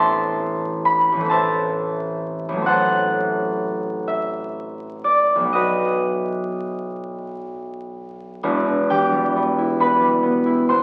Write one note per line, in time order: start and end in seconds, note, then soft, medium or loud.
0.00 1.11 A1 medium
0.00 1.15 E3 medium
0.00 1.20 A3 medium
0.00 1.24 C4 medium
0.00 1.30 E5 medium
0.00 1.28 A5 medium
0.00 3.85 C6 loud
0.85 1.62 B5 loud
1.12 2.47 A1 medium
1.12 2.62 E3 medium
1.21 2.55 A3 medium
1.25 2.60 C4 medium
1.29 2.66 C5 medium
1.29 2.70 E5 medium
1.29 5.19 A5 loud
2.49 5.49 A1 medium
2.49 5.39 F#3 medium
2.57 5.53 A3 medium
2.62 5.55 C4 medium
2.66 5.58 A4 medium
2.66 5.58 C5 medium
2.66 6.56 F#5 loud
4.08 5.73 E5 medium
5.04 5.88 D5 medium
5.36 8.39 B1 medium
5.40 8.41 F#3 soft
5.44 9.34 B3 soft
5.53 8.49 F#4 medium
5.53 9.45 B4 medium
5.53 8.48 D#5 medium
8.43 10.83 E1 medium
8.43 10.83 E2 medium
8.66 10.83 B2 medium
8.89 10.83 E3 medium
8.89 10.83 G4 medium
8.89 10.83 G5 loud
9.12 10.00 G3 medium
9.36 9.79 B3 medium
9.58 10.45 E4 medium
9.80 10.22 B3 medium
9.80 10.83 B4 medium
9.80 10.83 B5 loud
10.02 10.83 G3 medium
10.23 10.68 B3 medium
10.46 10.83 E4 medium
10.69 10.83 B3 medium
10.69 10.83 C5 medium
10.69 10.83 C6 loud